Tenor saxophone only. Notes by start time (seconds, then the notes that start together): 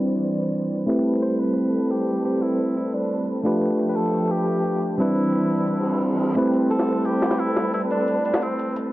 1.22 C5
1.39 B4
1.90 G4
2.25 G4
2.42 E4
2.76 E4
2.93 D4
3.89 B4
3.96 A4
4.31 G4
4.99 E4
6.71 A4
7.05 G4
7.39 E4
7.74 E4
7.91 D4
8.25 D4
8.42 C4